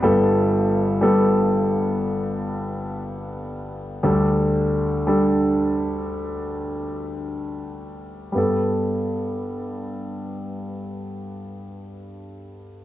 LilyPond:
\new Staff \with { instrumentName = "Grand piano" } { \time 4/4 \key g \major \tempo 4 = 56 << { <g b a'>4 <g b a'>2 r4 | <g d' a'>4 <g d' a'>2 r4 | <g b a'>1 | } \\ { <g,, g,>1 | <d, d>1 | g,1 | } >> }